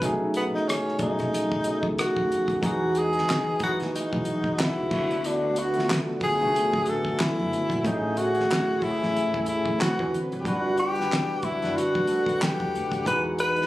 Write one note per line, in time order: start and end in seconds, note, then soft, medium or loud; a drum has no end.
0.00 0.48 B1 medium
0.00 0.99 B2 medium
0.00 0.02 A3 medium
0.00 0.94 A3 medium
0.00 0.03 C#4 medium
0.00 0.95 C#4 medium
0.00 0.04 D#4 medium
0.00 2.64 F#4 medium
0.00 kick medium
0.00 closed hi-hat medium
0.04 0.95 D#4 medium
0.04 0.96 G#4 loud
0.34 0.44 B3 medium
0.34 closed hi-hat medium
0.54 0.69 D#4 medium
0.54 muted upright bass stroke soft
0.54 cross-stick soft
0.68 0.99 C#4 medium
0.68 cross-stick loud
0.68 closed hi-hat medium
0.88 cross-stick soft
0.99 1.17 B1 medium
0.99 1.61 B2 medium
0.99 1.61 A3 medium
0.99 1.62 C#4 medium
0.99 1.93 D#4 medium
0.99 1.62 D#4 medium
0.99 1.63 G#4 medium
0.99 kick medium
0.99 closed hi-hat soft
1.19 1.31 B2 medium
1.19 cross-stick soft
1.19 closed hi-hat soft
1.33 1.62 B1 medium
1.33 closed hi-hat medium
1.52 kick medium
1.64 2.57 B2 medium
1.64 2.57 A3 soft
1.64 2.58 C#4 medium
1.64 2.58 D#4 medium
1.64 1.74 G#4 medium
1.64 closed hi-hat medium
1.74 2.62 A4 medium
1.83 1.96 C#2 medium
1.83 kick medium
1.98 2.60 F#4 medium
1.98 cross-stick loud
1.98 closed hi-hat medium
2.17 2.29 D#2 medium
2.17 kick medium
2.31 2.60 F2 medium
2.31 closed hi-hat medium
2.48 kick medium
2.48 closed hi-hat soft
2.61 3.21 E2 medium
2.61 3.54 E3 medium
2.61 4.89 E3 medium
2.61 4.89 G#3 medium
2.61 3.55 D#4 medium
2.61 7.81 F#4 medium
2.61 3.55 F#4 medium
2.61 3.56 G#4 loud
2.61 4.89 D#5 medium
2.61 kick loud
2.61 closed hi-hat medium
2.66 2.99 F#4 medium
2.95 3.62 G#4 loud
2.95 closed hi-hat medium
3.13 closed hi-hat soft
3.18 snare soft
3.30 snare loud
3.30 clap medium
3.30 closed hi-hat medium
3.59 4.83 E3 medium
3.59 4.84 D#4 medium
3.59 4.84 F#4 medium
3.59 3.77 F#4 medium
3.59 4.85 B4 medium
3.59 muted upright bass stroke medium
3.59 kick loud
3.59 closed hi-hat medium
3.80 3.92 D#2 medium
3.80 snare soft
3.80 closed hi-hat soft
3.94 4.62 D#4 medium
3.94 muted upright bass stroke soft
3.94 closed hi-hat medium
4.13 4.42 B1 medium
4.13 kick medium
4.25 closed hi-hat medium
4.44 kick medium
4.59 5.27 E4 medium
4.59 muted upright bass stroke soft
4.59 snare loud
4.59 clap medium
4.59 closed hi-hat medium
4.78 4.90 C#2 medium
4.90 5.78 D2 medium
4.90 5.68 D3 medium
4.90 7.82 D3 medium
4.90 9.76 A3 medium
4.90 5.69 A3 medium
4.90 7.82 B3 medium
4.90 5.70 B3 medium
4.90 5.70 F#4 medium
4.90 kick loud
4.90 crash medium
5.11 closed hi-hat soft
5.24 5.60 D4 medium
5.24 closed hi-hat medium
5.56 5.97 F#4 medium
5.56 closed hi-hat medium
5.74 6.35 D3 medium
5.74 6.36 A3 medium
5.74 6.36 B3 medium
5.74 closed hi-hat soft
5.79 5.82 F4 medium
5.79 snare soft
5.85 6.40 F#4 medium
5.90 snare loud
5.90 clap medium
5.90 closed hi-hat medium
6.20 6.90 G#4 loud
6.20 muted upright bass stroke medium
6.20 kick loud
6.20 open hi-hat soft
6.39 6.53 B1 medium
6.39 6.83 D3 medium
6.39 6.84 A3 medium
6.39 6.85 B3 medium
6.39 6.85 F#4 medium
6.55 muted upright bass stroke soft
6.55 closed hi-hat medium
6.73 7.02 A1 medium
6.73 kick medium
6.85 7.78 D3 medium
6.85 7.79 A3 medium
6.85 7.80 B3 medium
6.85 7.23 A4 medium
6.85 closed hi-hat medium
6.90 7.80 G#5 medium
7.05 kick medium
7.20 7.85 E4 medium
7.20 muted upright bass stroke soft
7.20 snare loud
7.20 clap loud
7.20 closed hi-hat medium
7.39 7.51 F#1 medium
7.53 closed hi-hat medium
7.70 7.83 A#1 medium
7.70 kick medium
7.70 closed hi-hat soft
7.83 8.43 A1 medium
7.83 8.76 A2 loud
7.83 9.78 C#3 medium
7.83 10.43 E3 loud
7.83 8.77 A3 medium
7.83 8.77 C#4 medium
7.83 8.19 D#4 medium
7.83 9.78 G#4 medium
7.83 kick loud
7.83 closed hi-hat medium
7.87 7.93 G4 medium
7.94 8.81 G#4 loud
8.17 8.85 F#4 loud
8.17 closed hi-hat medium
8.35 closed hi-hat soft
8.40 snare soft
8.52 snare loud
8.52 clap medium
8.52 closed hi-hat medium
8.81 9.80 A2 medium
8.81 9.80 A3 medium
8.81 9.81 C#4 medium
8.81 9.48 E4 loud
8.81 muted upright bass stroke soft
8.81 kick loud
8.81 open hi-hat soft
8.85 8.91 G4 medium
8.91 9.85 G#4 medium
9.02 9.14 G#1 medium
9.02 snare soft
9.16 muted upright bass stroke soft
9.16 closed hi-hat medium
9.34 9.63 E2 medium
9.34 kick medium
9.46 9.78 E4 medium
9.46 closed hi-hat medium
9.65 kick medium
9.79 10.00 D2 loud
9.79 10.45 C3 medium
9.79 10.41 D3 medium
9.79 10.45 F#3 medium
9.79 10.42 C4 medium
9.79 10.42 E4 medium
9.79 10.17 F#4 loud
9.79 10.43 F#4 medium
9.79 13.03 B4 medium
9.79 10.43 B4 medium
9.79 snare loud
9.79 clap loud
9.79 closed hi-hat medium
9.99 10.12 E2 medium
9.99 kick medium
10.14 closed hi-hat medium
10.32 10.45 G#1 medium
10.32 closed hi-hat soft
10.40 10.48 G4 medium
10.44 11.04 G1 loud
10.44 13.04 D3 medium
10.44 10.92 G3 medium
10.44 13.04 G3 medium
10.44 10.93 D4 medium
10.44 10.94 F#4 medium
10.44 10.79 F#4 loud
10.44 13.67 F#5 loud
10.44 kick loud
10.44 closed hi-hat medium
10.48 10.94 B4 loud
10.77 11.46 G4 loud
10.77 closed hi-hat medium
10.95 11.56 G3 medium
10.95 11.57 D4 medium
10.95 11.58 F#5 medium
10.95 closed hi-hat soft
11.00 11.58 B4 medium
11.00 snare soft
11.13 snare loud
11.13 clap medium
11.13 closed hi-hat medium
11.42 11.79 E4 loud
11.42 muted upright bass stroke soft
11.42 kick loud
11.42 closed hi-hat medium
11.61 11.75 F#1 medium
11.61 12.05 G3 medium
11.61 12.06 D4 medium
11.61 12.07 F#4 medium
11.61 snare soft
11.61 closed hi-hat soft
11.65 12.07 B4 medium
11.77 12.44 F#4 loud
11.77 muted upright bass stroke soft
11.77 closed hi-hat medium
11.95 12.24 D2 medium
11.95 kick medium
12.07 13.00 G3 medium
12.07 13.01 D4 medium
12.07 13.01 F#5 medium
12.07 closed hi-hat medium
12.12 13.02 A4 medium
12.26 kick medium
12.26 closed hi-hat soft
12.42 13.07 G4 loud
12.42 snare loud
12.42 clap loud
12.42 closed hi-hat medium
12.60 12.73 E2 medium
12.60 kick medium
12.75 13.07 F1 medium
12.75 closed hi-hat medium
12.92 kick medium
12.92 closed hi-hat soft
13.05 13.65 E1 medium
13.05 13.67 E3 medium
13.05 13.67 G#3 medium
13.05 13.67 D#4 medium
13.05 13.67 F#4 medium
13.05 13.67 G#4 medium
13.05 13.22 B4 loud
13.05 kick loud
13.05 closed hi-hat medium
13.39 13.67 B4 loud
13.39 closed hi-hat medium
13.56 closed hi-hat soft
13.61 snare soft